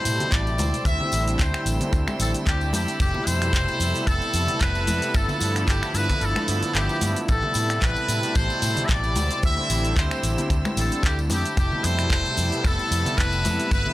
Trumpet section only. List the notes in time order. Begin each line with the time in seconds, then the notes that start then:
Already playing: C5
0.32 D5
0.85 E5
1.39 C5
2.19 A4
2.46 G4
2.73 G4
2.99 G4
3.26 C5
4.06 A4
4.60 B4
5.13 A4
5.68 G4
5.95 B4
6.21 A4
6.74 G4
7.28 A4
7.82 B4
8.35 C5
8.83 E5
8.89 D5
9.43 E5
9.97 C5
10.78 A4
11.04 G4
11.31 G4
11.57 G4
11.84 C5
12.64 A4
13.18 B4
13.71 B4